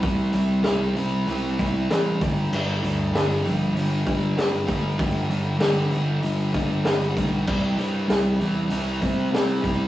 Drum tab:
CC |----------------|x---------------|----------------|x---------------|
HH |o-o-o-o-o-o-o-o-|--o-o-o-o-o-o-o-|o-o-o-o-o-o-o-o-|--o-o-o-o-o-o-o-|
SD |----o-------o---|----oo------o---|----oo------o---|----oo------o---|
BD |o---------o---o-|----------o---o-|o---------o---o-|o---------o---o-|